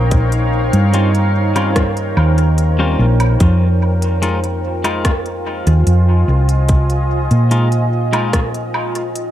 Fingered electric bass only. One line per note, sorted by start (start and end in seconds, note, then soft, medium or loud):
0.00 0.69 A#1 medium
0.73 2.16 G2 medium
2.17 2.95 D#2 medium
2.99 3.35 A#1 loud
3.40 5.63 F2 loud
5.67 5.85 D#2 loud
5.87 6.23 F2 loud
6.28 7.27 C2 medium
7.31 9.31 A#2 medium